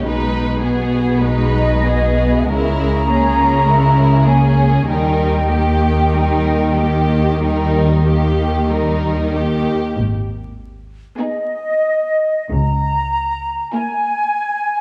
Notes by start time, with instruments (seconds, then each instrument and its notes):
0.05 double bass section B1, cello section B2, viola section G#3, violin section D#4 B4
0.62 viola section B3, violin section B3 G#4
1.20 viola section G#3, violin section B4, flute section D#5
1.24 violin section D#4
1.84 viola section B3, violin section B3 G#4
2.48 double bass section C#2, cello section C#3, viola section G#3, violin section A#4, flute section A#5
2.52 violin section E4
3.09 viola section A#3, violin section C#4 G#4
3.66 viola section G#3, violin section E4 A#4
4.25 viola section A#3, violin section C#4 G#4, flute section G#5
4.87 double bass section D#2, cello section D#3, viola section G3, violin section D#4 A#4, flute section G5
5.50 viola section A#3, violin section G4
6.13 viola section G3, violin section D#4 A#4
6.76 viola section A#3, violin section G4
7.41 viola section G3, violin section D#4 A#4
8.06 viola section A#3, violin section G4
8.69 viola section G3, violin section D#4 A#4
9.33 viola section A#3, violin section G4
9.97 double bass section G#1, cello section G#2
11.18 viola section B3, violin section D#4 G#4, flute section D#5
12.50 double bass section C#2, cello section C#3, flute section A#5
13.72 viola section A#3, violin section E4 A#4, flute section G#5